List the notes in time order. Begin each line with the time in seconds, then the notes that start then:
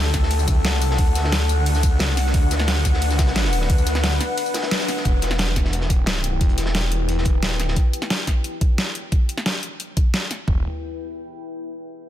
Already playing: D2 D4 A4 F#5
0.05 closed hi-hat
0.13 kick, snare, closed hi-hat, ride, tambourine
0.23 snare
0.31 closed hi-hat, ride
0.39 tambourine
0.48 kick, closed hi-hat, ride, tambourine
0.57 C#2
0.65 snare, closed hi-hat, ride
0.73 snare
0.82 C2, closed hi-hat, open hi-hat, ride, tambourine
0.91 snare
0.98 D2, kick, closed hi-hat, ride
1.07 closed hi-hat
1.15 snare, closed hi-hat, ride, tambourine
1.24 snare
1.32 snare, closed hi-hat, ride
1.49 closed hi-hat, ride, tambourine
1.66 closed hi-hat, ride
1.75 snare, tambourine
1.83 kick, closed hi-hat, ride, tambourine
1.93 C#2
1.99 snare, closed hi-hat, ride
2.08 snare
2.17 C2, snare, closed hi-hat, open hi-hat, ride, tambourine
2.26 snare
2.34 D2 B4, kick, closed hi-hat, ride
2.51 snare, closed hi-hat, ride, tambourine
2.60 snare
2.68 snare, closed hi-hat, ride
2.77 closed hi-hat
2.85 kick, snare, closed hi-hat, ride, tambourine
2.94 snare
3.02 closed hi-hat, ride
3.10 snare, tambourine
3.19 kick, snare, closed hi-hat, ride, tambourine
3.27 snare, closed hi-hat
3.35 snare, closed hi-hat, ride
3.44 snare, closed hi-hat
3.53 closed hi-hat, open hi-hat, ride, tambourine
3.61 snare
3.70 D2, kick, closed hi-hat, ride
3.78 closed hi-hat, tambourine
3.86 snare, closed hi-hat, ride, tambourine
3.95 snare
4.04 snare, closed hi-hat, ride
4.12 tambourine
4.20 snare, closed hi-hat, ride, tambourine
4.37 closed hi-hat, ride
4.46 tambourine
4.54 snare, closed hi-hat, ride, tambourine
4.62 snare, closed hi-hat
4.71 snare, closed hi-hat, ride
4.79 snare, closed hi-hat, tambourine
4.88 snare, closed hi-hat, open hi-hat, ride, tambourine
4.97 snare
5.05 E1 E4 B4 G5, kick, closed hi-hat
5.22 snare, closed hi-hat
5.30 snare
5.38 snare, closed hi-hat
5.47 closed hi-hat
5.56 kick, snare, closed hi-hat
5.65 snare
5.73 closed hi-hat
5.81 snare
5.90 kick, closed hi-hat
6.02 D1, snare
6.06 snare, closed hi-hat
6.15 snare
6.24 closed hi-hat
6.41 E1, kick, closed hi-hat
6.49 closed hi-hat
6.58 snare, closed hi-hat
6.66 snare
6.75 snare, closed hi-hat
6.91 closed hi-hat
7.09 closed hi-hat
7.18 snare
7.25 kick, closed hi-hat
7.35 D#1
7.43 snare, closed hi-hat
7.51 snare
7.60 D1, snare, closed hi-hat
7.68 snare
7.76 kick, closed hi-hat
7.93 closed hi-hat
8.02 snare
8.10 snare, closed hi-hat
8.27 kick, snare, closed hi-hat
8.44 closed hi-hat
8.61 kick, closed hi-hat
8.78 snare, closed hi-hat
8.95 closed hi-hat
9.12 kick, closed hi-hat
9.29 closed hi-hat
9.38 snare
9.46 snare, closed hi-hat
9.63 closed hi-hat
9.80 closed hi-hat
9.97 kick, closed hi-hat
10.14 snare, closed hi-hat
10.31 snare, closed hi-hat
10.48 E1, kick, floor tom